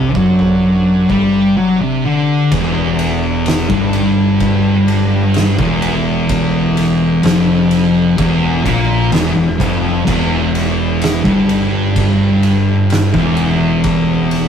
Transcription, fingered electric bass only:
0.15 F#2
1.10 G2
2.52 E1
3.70 G1
5.58 E1
7.23 F1
8.18 E1
8.66 A#1
9.12 E1
9.35 E1
9.60 F1
10.07 E1
11.25 G1
13.14 E1

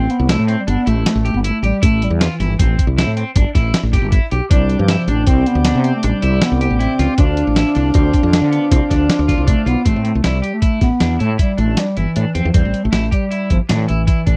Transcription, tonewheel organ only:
4.49 C3 D4 G4 D5
7.18 D3 C4 F4 D5

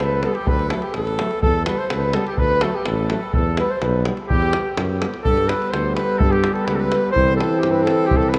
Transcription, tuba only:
0.00 C#2
0.47 D2
0.94 A1
1.43 E2
1.91 C#2
2.38 D2
2.86 A1
3.35 E2
3.82 B1
4.29 E2
4.77 F#2
5.26 G2
5.73 D2
6.21 G2
6.68 C#2
7.16 C2
7.63 G2
8.11 C2

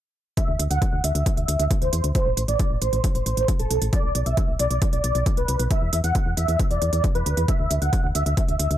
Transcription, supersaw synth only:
0.37 E5
0.71 F#5
1.04 E5
1.37 E5
1.82 C5
2.15 C5
2.48 D5
2.82 C5
3.15 C5
3.59 A4
3.93 D5
4.26 E5
4.59 D5
4.93 D5
5.37 B4
5.71 E5
6.04 F#5
6.37 E5
6.71 D5
7.15 B4
7.48 E5
7.82 F#5
8.15 E5
8.48 E5

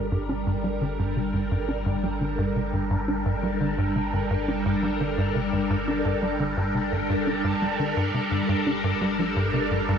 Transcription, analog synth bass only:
0.12 G2
0.29 D4
0.47 G2
0.64 G3
0.81 D3
0.99 G2
1.16 C3
1.34 G2
1.51 G2
1.69 D4
1.86 G2
2.04 G3
2.21 D3
2.38 G2
2.56 C3
2.73 G2
2.91 G2
3.08 D4
3.26 G2
3.43 G3
3.61 D3
3.78 G2
3.96 C3
4.13 G2
4.31 G2
4.48 D4
4.66 G2
4.83 G3
5.01 D3
5.18 G2
5.35 C3
5.53 G2
5.70 G2
5.88 D4
6.05 G2
6.22 G3
6.40 D3
6.57 G2
6.75 C3
6.92 G2
7.10 G2
7.27 D4
7.44 G2
7.62 G3
7.79 D3
7.97 G2
8.14 C3
8.31 G2
8.49 G2
8.67 D4
8.84 G2
9.01 G3
9.19 F3
9.36 G2
9.54 C3
9.71 G2
9.89 G2

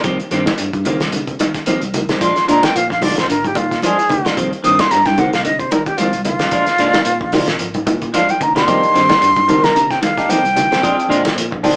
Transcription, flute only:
2.23 C6
2.50 A#5
2.65 G5
2.76 F5
2.92 F5
3.03 D5
3.19 C5
3.30 A#4
3.47 G4
3.57 F4
3.85 G#4
4.65 D#6
4.80 C6
4.91 A#5
5.06 G5
5.19 F#5
5.33 F5
5.45 D#5
5.59 C5
5.71 A#4
5.86 G4
5.97 F4
6.25 F4
8.15 F5
8.31 G5
8.43 A#5
8.56 C6
9.64 A#5
9.91 G5
10.03 F5
10.30 G5

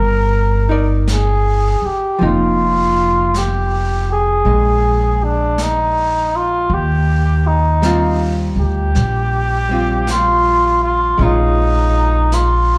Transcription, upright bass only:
Already playing: G1
1.82 muted upright bass stroke
2.21 F1
4.45 A#1
6.70 D#2
8.56 D2
8.95 A#1
11.19 A#1

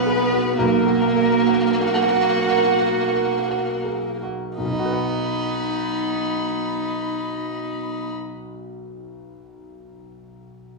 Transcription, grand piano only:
Already playing: B1 F#4 B4
0.06 G#4
0.33 F#4
0.58 B1
0.86 F#4
1.16 A#4
1.47 F#4
1.80 A#4
2.11 F#4
2.47 A#4
2.80 F#4
3.13 A#4
3.49 F#4
3.84 G#4
4.22 F#4
4.58 B1
4.65 B2
4.71 D#4
4.79 F#4
4.86 B4
4.93 F#5

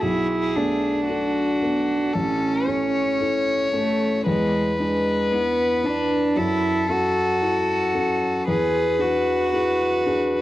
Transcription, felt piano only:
0.02 B1
0.56 A3 B3
1.09 D4 A4
1.62 B3 A4
2.15 A1
2.67 C#4 A4
3.20 E4 A4
3.73 C#4 A4
4.26 E2
4.80 D4 B4
5.32 E4 B4
5.84 D4 B4
6.36 F#2
6.89 C#4 A4
7.42 E4 A4
7.94 C#4 A4
8.48 E2
8.99 D4 G#4
9.53 E4 G#4
10.06 D4 G#4

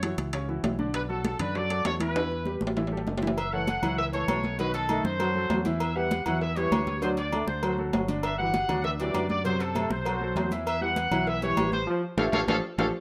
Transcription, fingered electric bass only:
Already playing: F#2
0.18 C#2
0.63 B1
1.39 F#2
1.85 E2
2.61 A1
3.07 F#1
3.82 C#2
4.28 B1
5.04 F#2
5.50 E2
6.26 E2
6.71 D2
7.47 D2
7.93 G1
8.69 D2
9.14 F#2
9.90 B1
10.35 E2
11.11 B1
11.57 A1
12.17 A1
12.32 A1
12.47 A1
12.78 A1

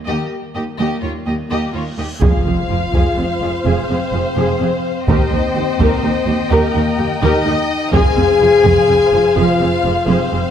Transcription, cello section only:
0.08 D#2
0.56 D#2
0.79 D#2
1.03 D#2
1.27 D#2
1.51 D#2
1.74 D#2
1.99 D#2
2.22 F2
2.46 F2
2.70 F2
2.93 F2
3.17 F2
3.41 F2
3.65 F2
3.89 F2
4.13 F2
4.37 F2
4.60 F2
5.08 D#2
5.31 D#2
5.55 D#2
5.79 D#2
6.03 D#2
6.27 D#2
6.51 D#2
6.75 D#2
6.98 D#2
7.22 D#2
7.46 D#2
7.94 F2
8.17 F2
8.41 F2
8.65 F2
8.89 F2
9.13 F2
9.37 F2
9.61 F2
9.85 F2
10.08 F2
10.32 F2

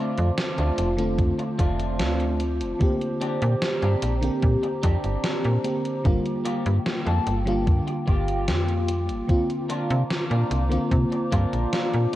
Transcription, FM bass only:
0.18 F2
0.58 D2
0.78 F1
1.19 F2
1.59 F1
2.00 D2
2.61 F1
3.42 A#2
3.82 G2
4.03 A#1
4.43 A#2
4.83 F2
5.04 G1
5.45 A#2
6.05 G1
6.66 G2
7.07 F2
7.27 G1
7.67 G2
8.08 G1
8.48 F2
9.10 G1
9.91 C3
10.31 A#2
10.51 C2
10.92 C3
11.32 G2
11.53 A#1
11.94 A#2

